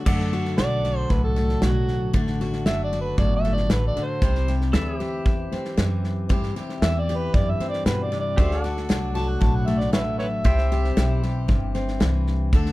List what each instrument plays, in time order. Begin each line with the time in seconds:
0.06 upright bass F#2, steel-string acoustic guitar D3 A3 D4 F#4, pedal steel guitar A4 D5 F#5, kick, snare, crash
0.19 snare
0.32 steel-string acoustic guitar F#4, snare
0.45 snare
0.58 upright bass B1, steel-string acoustic guitar F#3 D4, harmonica D5, snare, hi-hat pedal
0.84 steel-string acoustic guitar F#4, snare
0.97 harmonica C5
1.10 upright bass C2, steel-string acoustic guitar A2, harmonica B4, kick, snare
1.24 harmonica A4
1.36 steel-string acoustic guitar A3, snare
1.49 snare
1.62 upright bass B1, steel-string acoustic guitar F#3, harmonica F#4, snare, hi-hat pedal
1.88 snare
2.13 upright bass A1, steel-string acoustic guitar D3 A3 D4 F#4, kick, snare
2.27 snare
2.40 steel-string acoustic guitar F#4, snare
2.53 snare
2.66 upright bass F#1, steel-string acoustic guitar F#3 D4, harmonica E5, snare, hi-hat pedal
2.84 harmonica D5
2.92 steel-string acoustic guitar F#4, snare
3.01 harmonica B4
3.18 upright bass G1, steel-string acoustic guitar A2, harmonica D5, kick, snare
3.36 harmonica E5
3.44 steel-string acoustic guitar A3, snare
3.54 harmonica D5, snare
3.70 upright bass A1, steel-string acoustic guitar E3, harmonica B4, snare, hi-hat pedal
3.87 harmonica D5
3.96 steel-string acoustic guitar D3, muted upright bass stroke, snare
4.04 harmonica C5
4.22 upright bass C2, steel-string acoustic guitar C3 C4 E4 G4, kick, snare
4.35 snare
4.48 steel-string acoustic guitar G4, snare
4.61 snare
4.73 upright bass D2, steel-string acoustic guitar E3 E4, pedal steel guitar A4 D5 E5, snare, hi-hat pedal
4.98 pedal steel guitar G4 C5, steel-string acoustic guitar G4, snare
5.25 upright bass E2, kick, snare
5.52 steel-string acoustic guitar C4, muted upright bass stroke, snare
5.65 snare
5.77 upright bass F#2, steel-string acoustic guitar E3, snare, hi-hat pedal
6.04 snare
6.29 upright bass G2, steel-string acoustic guitar C3 C4 E4 G4, kick, snare
6.43 snare
6.56 steel-string acoustic guitar G4, muted upright bass stroke, snare
6.69 snare
6.82 upright bass E2, steel-string acoustic guitar E3 E4, harmonica E5, snare, hi-hat pedal
7.00 harmonica D5
7.09 steel-string acoustic guitar G4, snare
7.17 harmonica B4
7.34 upright bass F#2, steel-string acoustic guitar G2, harmonica D5, kick, snare
7.51 harmonica E5
7.60 steel-string acoustic guitar C4, muted upright bass stroke, snare
7.69 harmonica D5
7.73 snare
7.86 upright bass G2, steel-string acoustic guitar B2, harmonica B4, snare, hi-hat pedal
8.03 harmonica D5
8.12 steel-string acoustic guitar C3, snare
8.20 harmonica D5
8.37 upright bass D2, steel-string acoustic guitar D3 A3 D4 F#4, pedal steel guitar G4 C5 E5, kick, snare
8.51 snare
8.62 steel-string acoustic guitar F#4, pedal steel guitar A4 D5 F#5, snare
8.77 snare
8.89 upright bass C2, steel-string acoustic guitar F#3 D4, snare, hi-hat pedal
9.15 steel-string acoustic guitar F#4, harmonica A5, snare
9.29 harmonica F#5
9.41 upright bass B1, steel-string acoustic guitar A2, harmonica A5, kick, snare
9.56 harmonica F#5
9.67 steel-string acoustic guitar A3, harmonica E5, snare
9.80 harmonica D5, snare
9.93 upright bass A1, steel-string acoustic guitar F#3, harmonica B4 C#5 E5, snare, hi-hat pedal
10.19 harmonica B4 C#5 E5, snare
10.44 upright bass C2, steel-string acoustic guitar C3 C4 E4 G4, pedal steel guitar C5 E5 G5, kick, snare
10.58 snare
10.71 steel-string acoustic guitar G4, snare
10.84 snare
10.97 upright bass B1, steel-string acoustic guitar E3 E4, snare, hi-hat pedal
11.23 steel-string acoustic guitar G4, snare
11.48 upright bass G1, steel-string acoustic guitar G2, kick, snare
11.75 steel-string acoustic guitar C4, snare
11.88 snare
12.00 upright bass C2, steel-string acoustic guitar E3, snare, hi-hat pedal
12.27 snare
12.53 upright bass D2, steel-string acoustic guitar D3 A3 D4 A4, kick, snare
12.66 snare